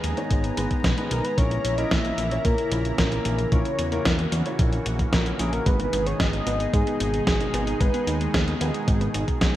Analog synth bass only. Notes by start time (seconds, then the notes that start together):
0.04 D#2
0.31 G#1
0.57 G#1
0.84 B1
1.11 B1
1.38 A#1
1.64 A#1
1.91 A#1
2.18 A#1
2.45 A#2
2.72 A#1
2.98 A#1
3.25 A#1
3.52 A#1
3.79 E2
4.06 E2
4.32 E2
4.59 A#1
4.86 A#1
5.13 A#1
5.39 A#1
5.66 G#1
5.93 G#1
6.20 G#1
6.47 G#1
6.73 G#2
7.00 G#1
7.27 G#1
7.54 G#1
7.81 G#1
8.07 D#2
8.34 D#2
8.61 D#2
8.88 G#1
9.15 G#1
9.41 B1